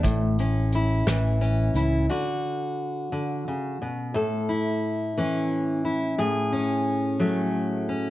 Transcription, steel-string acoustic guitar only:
0, 0, Header, 1, 2, 480
1, 0, Start_track
1, 0, Key_signature, 3, "major"
1, 0, Tempo, 681044
1, 31, Time_signature, 6, 3, 24, 8
1, 5709, End_track
2, 0, Start_track
2, 0, Title_t, "Steel-string acoustic guitar"
2, 0, Program_c, 0, 25
2, 0, Note_on_c, 0, 57, 47
2, 23, Note_on_c, 0, 45, 70
2, 277, Note_off_c, 0, 57, 0
2, 281, Note_on_c, 0, 61, 44
2, 529, Note_on_c, 0, 64, 50
2, 752, Note_on_c, 0, 52, 59
2, 986, Note_off_c, 0, 61, 0
2, 995, Note_on_c, 0, 61, 45
2, 1233, Note_off_c, 0, 64, 0
2, 1242, Note_on_c, 0, 64, 50
2, 1439, Note_off_c, 0, 45, 0
2, 1445, Note_off_c, 0, 61, 0
2, 1449, Note_off_c, 0, 64, 0
2, 1473, Note_off_c, 0, 52, 0
2, 1477, Note_on_c, 0, 50, 67
2, 1480, Note_on_c, 0, 66, 59
2, 2192, Note_off_c, 0, 50, 0
2, 2200, Note_on_c, 0, 50, 58
2, 2437, Note_off_c, 0, 50, 0
2, 2451, Note_on_c, 0, 49, 48
2, 2682, Note_off_c, 0, 49, 0
2, 2690, Note_on_c, 0, 47, 53
2, 2917, Note_off_c, 0, 66, 0
2, 2920, Note_on_c, 0, 45, 71
2, 2922, Note_off_c, 0, 47, 0
2, 2929, Note_on_c, 0, 69, 64
2, 3164, Note_on_c, 0, 64, 51
2, 3647, Note_on_c, 0, 52, 61
2, 3654, Note_on_c, 0, 61, 55
2, 4113, Note_off_c, 0, 64, 0
2, 4121, Note_on_c, 0, 64, 48
2, 4328, Note_off_c, 0, 45, 0
2, 4329, Note_off_c, 0, 64, 0
2, 4333, Note_off_c, 0, 69, 0
2, 4358, Note_on_c, 0, 45, 69
2, 4360, Note_off_c, 0, 52, 0
2, 4361, Note_on_c, 0, 68, 70
2, 4599, Note_off_c, 0, 61, 0
2, 4599, Note_on_c, 0, 61, 48
2, 5071, Note_on_c, 0, 54, 59
2, 5076, Note_on_c, 0, 57, 56
2, 5552, Note_off_c, 0, 61, 0
2, 5560, Note_on_c, 0, 61, 51
2, 5709, Note_off_c, 0, 45, 0
2, 5709, Note_off_c, 0, 54, 0
2, 5709, Note_off_c, 0, 57, 0
2, 5709, Note_off_c, 0, 61, 0
2, 5709, Note_off_c, 0, 68, 0
2, 5709, End_track
0, 0, End_of_file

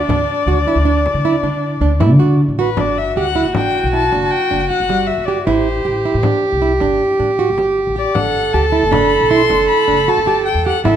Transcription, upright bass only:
0, 0, Header, 1, 2, 480
1, 0, Start_track
1, 0, Key_signature, 1, "major"
1, 0, Tempo, 384369
1, 109, Time_signature, 7, 2, 24, 8
1, 13691, End_track
2, 0, Start_track
2, 0, Title_t, "Upright bass"
2, 0, Program_c, 0, 32
2, 105, Note_on_c, 0, 38, 87
2, 310, Note_off_c, 0, 38, 0
2, 578, Note_on_c, 0, 38, 88
2, 786, Note_off_c, 0, 38, 0
2, 942, Note_on_c, 0, 38, 86
2, 1352, Note_off_c, 0, 38, 0
2, 1428, Note_on_c, 0, 50, 91
2, 1631, Note_off_c, 0, 50, 0
2, 1785, Note_on_c, 0, 50, 82
2, 2193, Note_off_c, 0, 50, 0
2, 2258, Note_on_c, 0, 38, 94
2, 2618, Note_off_c, 0, 38, 0
2, 2618, Note_on_c, 0, 50, 77
2, 3029, Note_off_c, 0, 50, 0
2, 3100, Note_on_c, 0, 33, 77
2, 3408, Note_off_c, 0, 33, 0
2, 3458, Note_on_c, 0, 31, 80
2, 3869, Note_off_c, 0, 31, 0
2, 3944, Note_on_c, 0, 38, 78
2, 4250, Note_off_c, 0, 38, 0
2, 4306, Note_on_c, 0, 30, 74
2, 4713, Note_off_c, 0, 30, 0
2, 4787, Note_on_c, 0, 35, 87
2, 5091, Note_off_c, 0, 35, 0
2, 5143, Note_on_c, 0, 30, 76
2, 5347, Note_off_c, 0, 30, 0
2, 5634, Note_on_c, 0, 30, 79
2, 5834, Note_off_c, 0, 30, 0
2, 5995, Note_on_c, 0, 31, 75
2, 6399, Note_off_c, 0, 31, 0
2, 6468, Note_on_c, 0, 31, 84
2, 6670, Note_off_c, 0, 31, 0
2, 6828, Note_on_c, 0, 33, 90
2, 7235, Note_off_c, 0, 33, 0
2, 7315, Note_on_c, 0, 33, 85
2, 7515, Note_off_c, 0, 33, 0
2, 7673, Note_on_c, 0, 45, 87
2, 7874, Note_off_c, 0, 45, 0
2, 8147, Note_on_c, 0, 36, 81
2, 8453, Note_off_c, 0, 36, 0
2, 8504, Note_on_c, 0, 31, 76
2, 8709, Note_off_c, 0, 31, 0
2, 8986, Note_on_c, 0, 45, 80
2, 9293, Note_off_c, 0, 45, 0
2, 9359, Note_on_c, 0, 31, 81
2, 9763, Note_off_c, 0, 31, 0
2, 9829, Note_on_c, 0, 33, 79
2, 10032, Note_off_c, 0, 33, 0
2, 10184, Note_on_c, 0, 31, 86
2, 10595, Note_off_c, 0, 31, 0
2, 10660, Note_on_c, 0, 38, 88
2, 10970, Note_off_c, 0, 38, 0
2, 11023, Note_on_c, 0, 30, 87
2, 11434, Note_off_c, 0, 30, 0
2, 11494, Note_on_c, 0, 35, 89
2, 11807, Note_off_c, 0, 35, 0
2, 11860, Note_on_c, 0, 30, 80
2, 12068, Note_off_c, 0, 30, 0
2, 12345, Note_on_c, 0, 30, 80
2, 12551, Note_off_c, 0, 30, 0
2, 12699, Note_on_c, 0, 31, 79
2, 13113, Note_off_c, 0, 31, 0
2, 13167, Note_on_c, 0, 40, 85
2, 13381, Note_off_c, 0, 40, 0
2, 13537, Note_on_c, 0, 33, 92
2, 13691, Note_off_c, 0, 33, 0
2, 13691, End_track
0, 0, End_of_file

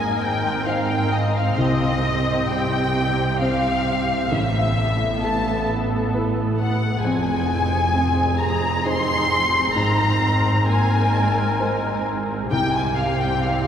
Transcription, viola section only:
0, 0, Header, 1, 2, 480
1, 0, Start_track
1, 0, Key_signature, -4, "minor"
1, 0, Tempo, 909091
1, 835, Time_signature, 3, 2, 24, 8
1, 5152, Tempo, 920245
1, 7194, End_track
2, 0, Start_track
2, 0, Title_t, "Viola section"
2, 0, Program_c, 0, 48
2, 0, Note_on_c, 0, 60, 59
2, 0, Note_on_c, 0, 70, 58
2, 814, Note_off_c, 0, 70, 0
2, 836, Note_on_c, 0, 67, 55
2, 2260, Note_off_c, 0, 60, 0
2, 2261, Note_off_c, 0, 67, 0
2, 2283, Note_on_c, 0, 59, 56
2, 2283, Note_on_c, 0, 69, 60
2, 3698, Note_off_c, 0, 59, 0
2, 3698, Note_off_c, 0, 69, 0
2, 3717, Note_on_c, 0, 68, 63
2, 3718, Note_on_c, 0, 60, 61
2, 5132, Note_off_c, 0, 68, 0
2, 5148, Note_on_c, 0, 70, 61
2, 6565, Note_off_c, 0, 70, 0
2, 6568, Note_off_c, 0, 60, 0
2, 6587, Note_on_c, 0, 60, 58
2, 6587, Note_on_c, 0, 67, 60
2, 7194, Note_off_c, 0, 60, 0
2, 7194, Note_off_c, 0, 67, 0
2, 7194, End_track
0, 0, End_of_file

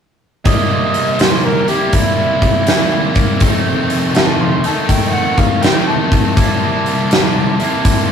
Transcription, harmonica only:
0, 0, Header, 1, 2, 480
1, 0, Start_track
1, 0, Tempo, 738916
1, 300, Time_signature, 4, 2, 24, 8
1, 5274, End_track
2, 0, Start_track
2, 0, Title_t, "Harmonica"
2, 0, Program_c, 0, 22
2, 301, Note_on_c, 0, 75, 79
2, 784, Note_on_c, 0, 72, 66
2, 794, Note_off_c, 0, 75, 0
2, 937, Note_off_c, 0, 72, 0
2, 943, Note_on_c, 0, 70, 65
2, 1095, Note_on_c, 0, 67, 72
2, 1104, Note_off_c, 0, 70, 0
2, 1260, Note_on_c, 0, 64, 89
2, 1270, Note_off_c, 0, 67, 0
2, 2194, Note_off_c, 0, 64, 0
2, 2700, Note_on_c, 0, 76, 49
2, 2700, Note_on_c, 0, 78, 49
2, 2700, Note_on_c, 0, 81, 70
2, 2747, Note_off_c, 0, 76, 0
2, 2757, Note_off_c, 0, 78, 0
2, 2856, Note_off_c, 0, 81, 0
2, 2864, Note_on_c, 0, 77, 44
2, 2864, Note_on_c, 0, 81, 44
2, 2864, Note_on_c, 0, 84, 63
2, 2909, Note_off_c, 0, 77, 0
2, 2919, Note_off_c, 0, 81, 0
2, 3028, Note_on_c, 0, 81, 67
2, 3038, Note_off_c, 0, 84, 0
2, 3183, Note_on_c, 0, 79, 75
2, 3193, Note_off_c, 0, 81, 0
2, 3335, Note_on_c, 0, 78, 71
2, 3345, Note_off_c, 0, 79, 0
2, 3499, Note_on_c, 0, 77, 71
2, 3509, Note_off_c, 0, 78, 0
2, 3664, Note_on_c, 0, 79, 76
2, 3674, Note_off_c, 0, 77, 0
2, 3824, Note_on_c, 0, 81, 73
2, 3834, Note_off_c, 0, 79, 0
2, 5238, Note_off_c, 0, 81, 0
2, 5274, End_track
0, 0, End_of_file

